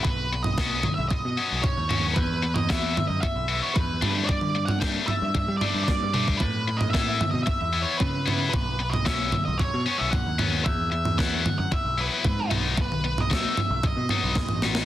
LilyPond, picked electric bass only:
\new Staff \with { instrumentName = "Picked electric bass" } { \clef bass \time 4/4 \key b \mixolydian \tempo 4 = 113 b,,4.~ b,,16 b,,8 b,16 r16 b,,8 dis,8. | e,4.~ e,16 fis,16 r16 b,,8 r16 e,8 g,8~ | g,4. r16 g,8 g16 r16 g,8 g,8. | a,4.~ a,16 b,16 r16 e,8 r16 cis4 |
b,,4.~ b,,16 b,,8 b,16 r16 b,,8 dis,8. | e,4.~ e,16 fis,16 r16 b,,8 r16 gis,8 b,,8~ | b,,4. r16 b,,8 b,16 r16 b,,8 a,,8. | }